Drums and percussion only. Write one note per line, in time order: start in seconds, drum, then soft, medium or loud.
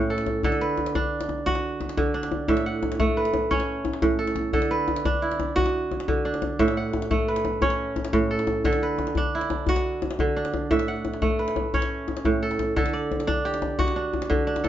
0.18 djembe slap soft
0.26 djembe slap soft
0.26 djembe tone medium
0.43 djembe bass medium
0.52 djembe slap soft
0.61 djembe slap soft
0.69 djembe slap soft
0.78 djembe tone medium
0.86 djembe slap soft
0.95 djembe bass medium
1.21 djembe slap soft
1.29 djembe slap soft
1.29 djembe tone medium
1.38 djembe slap soft
1.47 djembe bass medium
1.55 djembe slap medium
1.81 djembe tone medium
1.89 djembe slap medium
1.97 djembe bass medium
2.23 djembe slap medium
2.32 djembe slap soft
2.32 djembe tone medium
2.48 djembe bass medium
2.57 djembe slap soft
2.74 djembe slap soft
2.83 djembe slap soft
2.83 djembe tone medium
2.92 djembe slap medium
3.00 djembe bass medium
3.25 djembe slap soft
3.34 djembe tone medium
3.43 djembe slap soft
3.51 djembe bass medium
3.60 djembe slap soft
3.85 djembe tone medium
3.93 djembe slap medium
4.02 djembe bass medium
4.11 djembe slap soft
4.27 djembe slap soft
4.36 djembe slap soft
4.36 djembe tone medium
4.53 djembe bass medium
4.62 djembe slap soft
4.71 djembe slap soft
4.79 djembe slap soft
4.88 djembe tone medium
4.96 djembe slap soft
5.05 djembe bass medium
5.31 djembe slap soft
5.40 djembe slap soft
5.40 djembe tone medium
5.49 djembe slap soft
5.57 djembe bass medium
5.66 djembe slap soft
5.91 djembe tone medium
6.00 djembe slap medium
6.08 djembe bass medium
6.34 djembe slap soft
6.42 djembe slap soft
6.42 djembe tone medium
6.59 djembe bass medium
6.68 djembe slap medium
6.77 djembe slap soft
6.85 djembe slap soft
6.93 djembe tone medium
7.02 djembe slap medium
7.11 djembe bass medium
7.36 djembe slap medium
7.45 djembe slap soft
7.45 djembe tone medium
7.53 djembe slap soft
7.62 djembe bass medium
7.70 djembe slap medium
7.96 djembe tone medium
8.05 djembe slap medium
8.13 djembe bass medium
8.39 djembe slap soft
8.47 djembe slap soft
8.47 djembe tone medium
8.64 djembe bass medium
8.73 djembe slap medium
8.82 djembe slap soft
8.90 djembe slap soft
8.98 djembe tone medium
9.07 djembe slap soft
9.15 djembe bass medium
9.41 djembe slap medium
9.50 djembe slap soft
9.50 djembe tone medium
9.58 djembe slap soft
9.67 djembe bass medium
9.76 djembe slap medium
10.02 djembe tone medium
10.11 djembe slap medium
10.19 djembe bass medium
10.45 djembe slap medium
10.54 djembe slap soft
10.54 djembe tone medium
10.71 djembe bass medium
10.79 djembe slap medium
10.96 djembe slap soft
11.05 djembe tone medium
11.13 djembe slap soft
11.22 djembe slap soft
11.22 djembe bass medium
11.31 djembe slap soft
11.39 djembe slap soft
11.48 djembe slap medium
11.56 djembe tone medium
11.74 djembe slap soft
11.74 djembe bass medium
11.82 djembe slap soft
12.08 djembe tone medium
12.17 djembe slap medium
12.25 djembe bass medium
12.34 djembe slap soft
12.51 djembe slap soft
12.59 djembe tone medium
12.68 djembe slap soft
12.77 djembe bass medium
12.86 djembe slap soft
12.95 djembe slap soft
13.03 djembe slap soft
13.12 djembe tone medium
13.20 djembe slap medium
13.28 djembe bass medium
13.54 djembe slap medium
13.62 djembe slap soft
13.62 djembe tone medium
13.71 djembe slap soft
13.79 djembe bass medium
13.88 djembe slap medium
14.13 djembe tone medium
14.22 djembe slap medium
14.31 djembe bass medium
14.56 djembe slap medium
14.64 djembe slap soft
14.64 djembe tone medium